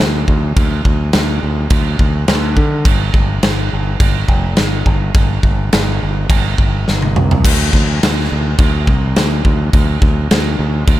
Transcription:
0.01 D2
0.28 D2, kick
0.56 D2, kick, crash
0.85 D2, kick
1.13 D2, snare, crash
1.43 D2
1.70 D2, kick, crash
1.99 D2, kick
2.28 D2, snare, crash
2.57 D3, kick
2.85 G1, kick, crash
3.14 G1, kick
3.43 G1, snare, crash
3.73 G1
4.00 G1, kick, crash
4.28 F1, kick
4.57 G1, snare, crash
4.86 G1, kick
5.14 G1, kick, crash
5.43 G1, kick
5.73 G1, snare, crash
6.03 G1
6.30 G1, kick, crash
6.58 G1, kick
6.88 G1, snare
7.02 high tom
7.16 C2, mid tom
7.31 floor tom
7.45 D2, kick, crash
7.73 D2, kick
8.03 D2, snare, crash
8.32 D2
8.58 D2, kick, crash
8.87 C2, kick
9.16 D2, snare, crash
9.45 D2, kick
9.73 D2, kick, crash
10.02 D2, kick
10.31 D2, snare, crash
10.59 D2
10.87 D2, kick, crash

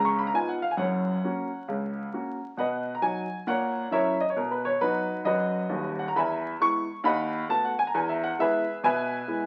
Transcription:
Already playing: C#2 C#3
0.05 C#6
0.19 B5
0.27 A#5
0.34 B3 D#4 F4 G#5
0.49 F#5
0.62 F5
0.71 G#5
0.77 F#1 F#2 C#5 F#5
1.24 A#3 C#4 F#4
1.68 C#2 C#3
2.13 A#3 C#4 F#4
2.57 B2 B4 D#5 F#5
2.95 A#5
3.01 F#3 D#4 F#4 G#5
3.47 A#2 A#4 C#5 F#5
3.91 F#3 C#4 E4 A#4 C#5 E5
4.21 D#5
4.30 C#5
4.36 B2 A#4
4.51 B4
4.65 C#5
4.81 F#3 B3 D#4 F#4 B4
5.24 F#2 F#4 B4 D#5
5.69 D#1 D#2
5.99 F#5
6.08 A#5
6.16 E2 E5 G#5 B5
6.60 G#3 B3 E4 C#6
7.04 D#2 D#5 F#5 B5
7.49 A3 B3 F#4 A5
7.65 F#5
7.79 G#5
7.87 A#5
7.94 E2 G#5
8.09 E5
8.24 F#5
8.39 G#3 B3 E4 G#4 B4 E5
8.83 B2 B4 E5 G#5
9.28 G#3 B3 E4

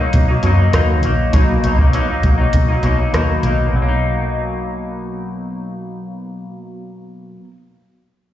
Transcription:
0.00 F#3 A#3 D#4
0.13 B2, kick, closed hi-hat
0.28 F#3 A#3 D#4
0.43 F#2 B2 F#3 A#3 D#4, closed hi-hat
0.57 F#3 A#3 D#4
0.73 D#2 B2 F#3 A#3 D#4, cross-stick, closed hi-hat
1.03 A#1 F#3 A#3 D#4, closed hi-hat
1.33 B1 B2 F#3 A#3 D#4, kick, closed hi-hat
1.63 B1 B2 F#3 A#3 D#4, closed hi-hat
1.78 F#3 A#3 D#4, kick
1.93 B2 F#3 A#3 D#4, closed hi-hat
2.08 F#3 A#3 D#4
2.23 B1, kick, closed hi-hat
2.38 F#3 A#3 D#4
2.53 B2, kick, closed hi-hat
2.69 F#3 A#3 D#4
2.83 B1 B2 F#3 A#3 D#4, closed hi-hat
2.98 F#3 A#3 D#4
3.13 D#2 B2 F#3 A#3 D#4, cross-stick, closed hi-hat
3.43 B1 B2 F#3 A#3 D#4, closed hi-hat
3.68 B2
3.73 B1 F#3
3.82 A#3
3.88 D#4

